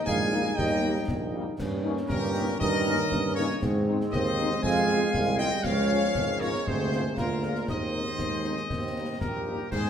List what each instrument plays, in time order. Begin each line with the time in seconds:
Already playing: trombone section G3 D#4
0.05 tuba A#1, euphonium G#3, flute section F5, trumpet section G#5, concert bass drum, snare
0.32 french horn section G3 A#3 D#4, snare
0.46 snare
0.56 tuba D#2, euphonium G3, flute section D#5, trumpet section G5, concert bass drum, snare
0.83 french horn section G3 A#3 D#4
1.08 tuba A#1, concert bass drum, snare
1.33 french horn section G3 A#3 D#4
1.59 tuba G2, trombone section A#3 C#4, concert bass drum, snare, crash
1.83 french horn section A#3 C#4 D#4
1.97 snare
2.09 tuba G2, euphonium A#2, flute section G4, trumpet section A#4, concert bass drum, snare
2.34 french horn section A#3 C#4 D#4, snare
2.48 snare
2.59 tuba G2, euphonium D#3, flute section A#4, trumpet section D#5, concert bass drum
2.86 french horn section A#3 C#4 D#4, snare
3.11 tuba G2, concert bass drum, snare
3.35 euphonium C#3, french horn section A#3 C#4 D#4, flute section A#4, trumpet section C#5, snare
3.50 snare
3.61 tuba G#2, trombone section G#3 C4, concert bass drum, snare, crash
3.88 french horn section G#3 C4 D#4
4.01 snare
4.11 tuba D#2, euphonium D#3, flute section C5, trumpet section D#5, concert bass drum, snare
4.39 french horn section G#3 C4 D#4, snare
4.51 snare
4.62 tuba F2, euphonium G#3, flute section F5, trumpet section G#5, concert bass drum
4.88 french horn section G#3 C4 F4, snare
5.14 tuba C2, concert bass drum, snare
5.38 euphonium G3, french horn section G#3 C4 F4, flute section D#5, trumpet section G5, snare
5.52 snare
5.63 tuba C#2, euphonium F3, trombone section G#3 C#4, flute section C#5, trumpet section F5, concert bass drum, snare, crash
5.91 french horn section G#3 C#4 F4
6.03 snare
6.15 tuba G#1, concert bass drum, snare
6.39 euphonium C#3, french horn section G#3 C#4 F4, flute section A#4, trumpet section C#5, snare
6.54 snare
6.65 tuba D2, euphonium C3, trombone section A#3, flute section G#4, trumpet section C5, concert bass drum
6.92 french horn section G#3 A#3 F4, snare
7.17 tuba D2, euphonium A#2, flute section F4, trumpet section A#4, concert bass drum, snare
7.43 french horn section G#3 A#3 F4, snare
7.55 snare
7.68 tuba D#2, euphonium D#3, trombone section G#3 C4, flute section C5, trumpet section D#5, concert bass drum, snare, crash
7.93 french horn section G#3 C4 D#4
8.07 snare
8.18 tuba D#2, trombone section G#3, concert bass drum, snare
8.44 french horn section G#3 C4 D#4, snare
8.57 snare
8.70 tuba D#2, trombone section C4, concert bass drum, snare
8.96 french horn section G3 A#3 D#4
9.20 tuba A#1, flute section G4, trumpet section A#4, concert bass drum, snare
9.46 french horn section G3 A#3 D#4, trombone section A#3
9.71 tuba G#2, trombone section D#3 G#3, flute section G#4, trumpet section C5, concert bass drum, snare, crash